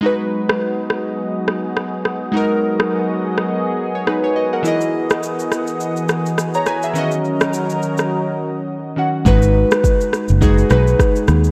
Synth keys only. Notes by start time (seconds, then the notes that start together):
0.01 G#3 D#4 F#4
0.06 B4
2.32 G#3 D#4 F#4
2.37 A#4
3.95 C#5
4.07 D#4 B4
4.24 C#5
4.36 F#4 D#5
4.53 A#4 F#5
4.63 E3 E4 G#4
4.68 D#5
6.55 C#5 A#5
6.67 B4 G#5
6.84 G#4 E5
6.94 D#3 C#4 F#4
6.99 D#5
8.96 D#3 C#4 F#4 F#5
9.25 G#3 D#4 F#4 B4
10.41 G#3 D#4 F#4 G#4
10.69 G#3 D#4 F#4 B4